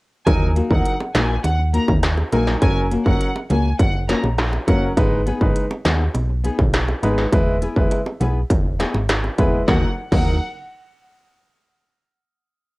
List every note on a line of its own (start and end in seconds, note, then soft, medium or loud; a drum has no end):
0.26 0.61 D#2 loud
0.26 0.48 F#3 medium
0.26 0.49 D#4 medium
0.26 0.49 A#4 loud
0.26 0.36 G#5 loud
0.26 kick loud
0.26 closed hi-hat medium
0.26 high bongo medium
0.56 0.74 A#3 medium
0.56 0.74 D#4 medium
0.56 0.75 F#4 medium
0.56 0.75 A#4 medium
0.56 closed hi-hat medium
0.71 0.82 D#2 medium
0.71 0.93 F#3 medium
0.71 0.93 D#4 medium
0.71 0.93 A#4 medium
0.71 0.90 F#5 medium
0.71 kick medium
0.85 closed hi-hat medium
1.00 high bongo medium
1.14 1.38 A#1 loud
1.14 1.33 A#3 medium
1.14 1.33 D#4 medium
1.14 1.33 F#4 loud
1.14 1.34 A#4 loud
1.14 1.34 G#5 medium
1.14 snare loud
1.14 closed hi-hat soft
1.14 low bongo medium
1.44 1.79 D#2 loud
1.44 1.54 F#5 medium
1.44 closed hi-hat medium
1.44 high bongo medium
1.59 muted nylon-string guitar stroke soft
1.73 1.92 A#3 medium
1.73 1.92 D#4 medium
1.73 1.92 F#4 medium
1.73 1.93 A#4 loud
1.73 1.84 A#5 medium
1.73 closed hi-hat medium
1.88 2.23 D#2 medium
1.88 kick medium
1.88 high bongo medium
2.03 cross-stick loud
2.03 snare loud
2.03 closed hi-hat medium
2.17 high bongo medium
2.32 2.56 A#1 medium
2.32 2.54 F#3 medium
2.32 2.51 A#3 medium
2.32 2.54 D#4 medium
2.32 2.51 D#4 medium
2.32 2.51 F#4 loud
2.32 2.55 A#4 medium
2.32 2.51 A#4 loud
2.32 2.42 G#5 medium
2.32 closed hi-hat medium
2.32 low bongo medium
2.47 snare medium
2.62 2.97 F#1 loud
2.62 2.84 F#3 loud
2.62 2.84 C#4 medium
2.62 2.84 A#4 loud
2.62 2.72 G#5 loud
2.62 kick loud
2.62 closed hi-hat medium
2.62 high bongo medium
2.91 3.09 A#3 medium
2.91 3.10 C#4 medium
2.91 3.10 F#4 medium
2.91 3.10 A#4 medium
2.91 closed hi-hat medium
3.06 3.17 F#1 medium
3.06 3.28 F#3 medium
3.06 3.28 C#4 medium
3.06 3.28 A#4 medium
3.06 3.26 F#5 medium
3.06 kick medium
3.21 closed hi-hat medium
3.36 high bongo medium
3.50 3.73 C#2 loud
3.50 3.68 A#3 medium
3.50 3.69 C#4 medium
3.50 3.69 F#4 medium
3.50 3.69 A#4 medium
3.50 3.70 G#5 medium
3.50 closed hi-hat soft
3.50 low bongo medium
3.79 4.14 F#1 medium
3.79 3.89 F#5 medium
3.79 kick loud
3.79 closed hi-hat medium
3.79 high bongo medium
3.94 muted nylon-string guitar stroke soft
4.08 4.27 A#3 medium
4.08 4.27 C#4 loud
4.08 4.28 F#4 medium
4.08 4.28 A#4 loud
4.08 4.19 A#5 medium
4.08 snare medium
4.08 closed hi-hat medium
4.24 4.58 A#1 medium
4.24 high bongo medium
4.38 cross-stick loud
4.38 snare loud
4.38 closed hi-hat medium
4.53 high bongo medium
4.67 4.91 F#1 medium
4.67 4.90 F#3 medium
4.67 4.86 A#3 medium
4.67 4.90 C#4 medium
4.67 4.86 C#4 medium
4.67 4.86 F#4 medium
4.67 4.90 A#4 medium
4.67 4.87 A#4 medium
4.67 4.78 F#5 medium
4.67 kick loud
4.67 closed hi-hat medium
4.67 low bongo medium
4.97 5.32 G#1 loud
4.97 5.19 G#3 loud
4.97 5.19 D#4 medium
4.97 5.19 B4 loud
4.97 kick loud
4.97 closed hi-hat medium
4.97 high bongo medium
5.26 5.45 B3 medium
5.26 5.45 D#4 medium
5.26 5.45 G#4 loud
5.26 5.46 B4 loud
5.26 closed hi-hat medium
5.41 5.53 G#1 medium
5.41 5.63 G#3 medium
5.41 5.63 D#4 medium
5.41 5.64 B4 medium
5.41 kick medium
5.56 closed hi-hat medium
5.71 high bongo medium
5.85 6.09 D#2 loud
5.85 6.03 B3 medium
5.85 6.04 D#4 loud
5.85 6.04 G#4 loud
5.85 6.04 B4 loud
5.85 snare loud
5.85 closed hi-hat soft
5.85 low bongo medium
6.15 6.50 B1 medium
6.15 closed hi-hat medium
6.15 high bongo medium
6.29 muted nylon-string guitar stroke soft
6.44 6.62 B3 medium
6.44 6.63 D#4 medium
6.44 6.63 G#4 medium
6.44 6.63 B4 medium
6.44 closed hi-hat medium
6.59 6.94 B1 loud
6.59 kick medium
6.59 high bongo medium
6.74 cross-stick loud
6.74 snare loud
6.74 closed hi-hat medium
6.88 high bongo medium
7.02 7.26 G#1 loud
7.02 7.25 G#3 medium
7.02 7.21 B3 medium
7.02 7.25 D#4 medium
7.02 7.21 D#4 medium
7.02 7.22 G#4 medium
7.02 7.25 B4 medium
7.02 7.22 B4 loud
7.02 closed hi-hat medium
7.02 low bongo medium
7.18 snare medium
7.32 7.67 E1 loud
7.32 7.54 G#3 loud
7.32 7.55 E4 medium
7.32 7.55 B4 loud
7.32 kick loud
7.32 closed hi-hat medium
7.32 high bongo medium
7.61 7.80 B3 medium
7.61 7.80 E4 medium
7.61 7.81 G#4 medium
7.61 7.81 B4 medium
7.61 closed hi-hat medium
7.76 7.88 E1 medium
7.76 7.98 G#3 medium
7.76 7.99 E4 medium
7.76 7.99 B4 medium
7.76 kick medium
7.91 closed hi-hat medium
7.91 high bongo medium
8.06 high bongo medium
8.20 8.44 B1 loud
8.20 8.39 B3 medium
8.20 8.39 E4 medium
8.20 8.39 G#4 medium
8.20 8.40 B4 loud
8.20 closed hi-hat soft
8.20 low bongo medium
8.50 8.85 E1 medium
8.50 kick loud
8.50 closed hi-hat medium
8.50 high bongo medium
8.64 muted nylon-string guitar stroke soft
8.79 8.98 B3 medium
8.79 8.98 E4 medium
8.79 8.98 G#4 medium
8.79 8.98 B4 medium
8.79 snare medium
8.79 closed hi-hat medium
8.94 9.29 G#1 medium
8.94 high bongo medium
9.09 cross-stick loud
9.09 snare loud
9.09 closed hi-hat medium
9.24 high bongo medium
9.38 9.62 E1 medium
9.38 9.60 G#3 medium
9.38 9.56 B3 medium
9.38 9.60 E4 medium
9.38 9.57 E4 medium
9.38 9.57 G#4 medium
9.38 9.61 B4 medium
9.38 9.57 B4 medium
9.38 kick loud
9.38 closed hi-hat medium
9.38 low bongo medium
9.67 9.84 D#2 loud
9.67 9.84 F#3 medium
9.67 9.85 A#3 medium
9.67 9.86 D#4 medium
9.67 9.84 D#4 medium
9.67 9.86 F#4 loud
9.67 9.85 A#4 loud
9.67 9.86 A#4 loud
9.67 9.84 F#5 medium
9.67 kick loud
9.67 snare medium
9.67 high bongo medium
10.11 10.39 D#2 loud
10.11 10.34 F#3 medium
10.11 10.29 A#3 medium
10.11 10.34 D#4 medium
10.11 10.30 D#4 medium
10.11 10.30 F#4 loud
10.11 10.34 A#4 medium
10.11 10.30 A#4 loud
10.11 10.39 F#5 medium
10.11 kick loud
10.11 crash medium
10.11 high bongo medium